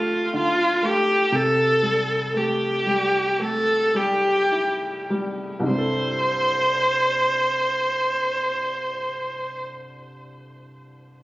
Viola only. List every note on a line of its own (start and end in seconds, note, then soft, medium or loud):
0.00 0.34 F4 medium
0.35 0.86 F4 loud
0.84 1.37 G4 loud
1.35 2.38 A4 loud
2.37 3.43 G4 medium
3.41 3.98 A4 medium
3.96 5.10 G4 medium
5.69 9.60 C5 medium